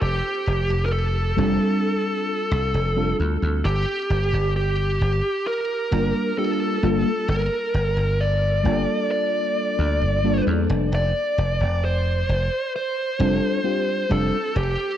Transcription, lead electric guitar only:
0.02 0.85 G4 medium
0.85 0.92 A#4 medium
0.92 3.16 A4 medium
3.65 4.52 G4 medium
4.56 5.47 G4 medium
5.47 6.38 A#4 medium
6.38 7.29 A4 medium
7.29 8.23 A#4 loud
8.21 9.10 D5 loud
9.11 10.43 D5 medium
10.95 11.85 D5 loud
11.85 12.71 C5 loud
12.76 14.16 C5 loud
14.11 14.53 A4 medium
14.57 14.97 G4 medium

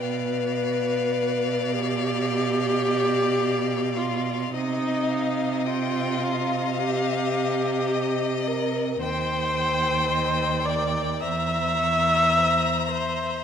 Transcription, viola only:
0.00 1.74 B4 loud
1.72 3.98 G4 loud
3.97 4.53 F4 medium
4.54 5.68 D#4 loud
5.67 6.79 F4 loud
6.80 8.49 G4 loud
8.47 9.01 A#4 medium
9.02 10.67 C5 loud
10.65 11.22 D5 loud
11.21 12.91 E5 loud
12.91 13.44 C5 loud

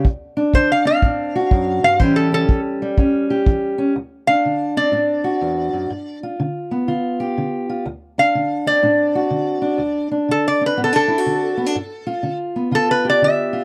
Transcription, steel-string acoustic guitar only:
0.05 0.50 D2 medium
0.37 1.02 D4 medium
0.55 0.99 D3 medium
0.85 1.98 C4 medium
1.03 1.48 A2 medium
1.03 1.98 D4 medium
1.36 1.99 F#4 medium
1.51 1.83 F#2 medium
1.83 2.00 G2 medium
1.99 2.45 A2 medium
1.99 2.48 E3 medium
1.99 2.81 G3 medium
1.99 2.31 C#4 medium
1.99 3.29 G4 medium
2.32 2.97 C#4 medium
2.49 2.94 E3 medium
2.82 3.96 G3 medium
2.98 3.43 E2 medium
2.98 3.77 C#4 medium
3.30 3.94 G4 medium
3.47 3.92 E3 medium
3.78 3.93 C#4 medium
3.96 4.41 D2 medium
4.29 4.92 D4 medium
4.45 4.90 D3 medium
4.77 5.89 C4 medium
4.92 5.38 A2 medium
4.92 6.23 D4 medium
5.24 5.88 F#4 medium
5.41 5.73 E2 medium
5.73 5.90 F#2 medium
5.90 6.36 G2 medium
6.23 6.87 F4 medium
6.40 6.85 D3 medium
6.71 7.84 B3 medium
6.88 7.33 D3 medium
6.88 7.68 F4 medium
7.20 7.84 G4 medium
7.38 7.83 D3 medium
7.69 7.84 F4 medium
7.86 8.31 D2 medium
8.18 8.83 D4 medium
8.35 8.80 D3 medium
8.66 9.79 C4 soft
8.83 9.28 A2 medium
8.83 9.61 D4 medium
9.15 9.79 F#4 medium
9.31 9.77 D3 medium
9.62 10.11 D4 medium
9.78 10.25 D2 medium
10.12 10.77 D4 medium
10.29 10.74 D3 medium
10.61 11.74 C4 soft
10.77 11.23 A2 medium
10.77 10.93 B3 medium
10.93 11.57 D4 medium
11.08 11.18 E4 medium
11.18 11.76 F#4 medium
11.26 11.72 D3 medium
11.57 11.66 B3 medium
11.66 11.75 D4 medium
11.75 12.21 G2 medium
12.07 12.72 F4 medium
12.23 12.69 D3 medium
12.56 13.64 B3 soft
12.71 13.17 D3 medium
12.71 13.52 F4 medium
13.05 13.64 G4 medium
13.22 13.64 D3 medium
13.53 13.64 F4 medium

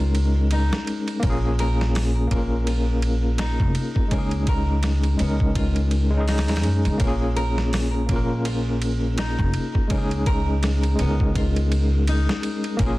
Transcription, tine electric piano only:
0.00 1.25 G#3 medium
0.00 1.23 C#4 medium
0.00 1.26 D#4 medium
0.00 1.25 G#4 loud
0.00 1.23 A#4 medium
1.20 2.26 A#3 medium
1.20 2.28 C#4 medium
1.26 2.30 F4 medium
1.26 2.31 G#4 loud
2.27 4.07 A#3 medium
2.27 4.08 C#4 medium
2.34 4.10 F4 medium
2.34 4.12 A#4 medium
4.08 5.15 G#3 medium
4.08 5.17 C#4 medium
4.15 5.18 D#4 medium
4.15 5.20 G#4 medium
5.17 6.08 G#3 medium
5.17 6.09 C#4 medium
5.23 6.11 D#4 medium
5.23 6.13 A#4 medium
6.10 6.96 G#3 medium
6.10 6.98 C#4 medium
6.17 6.99 D#4 medium
6.17 7.01 G#4 loud
6.98 8.04 A#3 medium
6.98 8.06 C#4 medium
7.04 8.08 F4 medium
7.04 8.09 G#4 loud
8.06 9.85 A#3 medium
8.06 9.87 C#4 medium
8.13 9.88 F4 medium
8.13 9.90 A#4 medium
9.88 10.94 G#3 medium
9.88 10.96 C#4 medium
9.94 10.97 D#4 medium
9.94 10.99 G#4 loud
10.95 12.74 G#3 medium
10.95 12.76 C#4 medium
11.02 12.78 D#4 medium
11.02 12.79 A#4 medium
12.77 12.99 A#3 medium
12.77 12.99 C#4 medium
12.83 12.99 F4 medium
12.83 12.99 G#4 loud

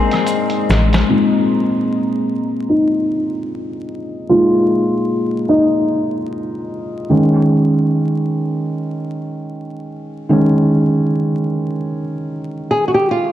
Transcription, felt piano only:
0.00 1.04 G#3 medium
0.00 1.02 A#3 medium
0.00 1.05 C4 medium
0.00 1.09 D#4 medium
0.00 1.08 A#4 medium
1.09 1.65 A#2 soft
1.09 1.66 G#3 soft
1.09 2.65 C4 medium
1.09 1.66 D#4 medium
2.69 4.29 D#4 medium
4.29 7.05 A#2 soft
4.29 7.06 G#3 soft
4.29 5.47 D#4 medium
4.29 5.53 F4 loud
5.49 7.05 D#4 medium
7.09 10.25 D#3 soft
7.09 10.25 G#3 soft
7.09 10.26 C#4 medium
10.29 13.32 D#3 soft
10.29 13.32 G#3 soft
10.29 13.32 C#4 medium

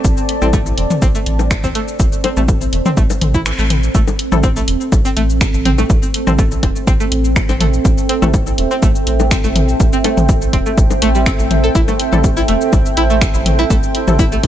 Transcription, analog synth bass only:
0.04 0.13 A1 loud
0.42 0.72 A1 medium
0.78 0.87 E1 medium
1.02 1.11 A1 loud
1.26 1.57 A1 medium
1.64 1.72 A1 medium
2.00 2.09 A1 loud
2.37 2.67 A1 medium
2.73 2.82 E1 medium
2.97 3.06 A1 loud
3.22 3.53 A1 medium
3.59 3.89 A1 loud
3.95 4.04 A1 loud
4.32 4.62 A1 medium
4.68 4.77 E1 medium
4.92 5.01 A1 loud
5.17 5.48 A1 medium
5.54 5.84 A1 loud
5.90 5.99 A1 loud
6.27 6.57 A1 medium
6.63 6.72 E1 medium
6.87 6.96 A1 loud
7.12 7.43 A1 medium
7.49 7.79 A1 loud
7.85 7.94 A1 loud
8.22 8.53 A1 medium
8.58 8.67 E1 medium
8.83 8.91 A1 loud
9.07 9.38 A1 medium
9.44 9.74 A1 loud
9.80 9.89 A1 loud
10.17 10.48 A1 medium
10.53 10.62 E1 medium
10.78 10.87 A1 loud
11.02 11.33 A1 medium
11.39 11.70 A1 loud
11.75 11.84 A1 loud
12.12 12.43 A1 medium
12.48 12.57 E1 medium
12.73 12.82 A1 loud
12.97 13.28 A1 medium
13.34 13.65 A1 loud
13.70 13.79 A1 loud
14.08 14.38 A1 medium
14.43 14.47 E1 loud

